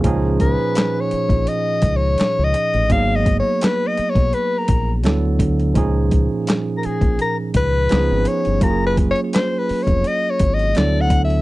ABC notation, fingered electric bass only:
X:1
M:4/4
L:1/16
Q:1/4=84
K:Dbmix
V:1 name="Fingered electric bass" clef=bass
D,,3 z4 B,,, z2 D,,2 z D,, z =A,,, | A,,,3 z4 C,, z2 B,,,2 =D,,2 D,,2 | D,,3 z4 B,,, z2 D,,2 D,, A,,, z =G,,, | G,,,3 z4 F,,, z2 A,,,2 =D,,4 |]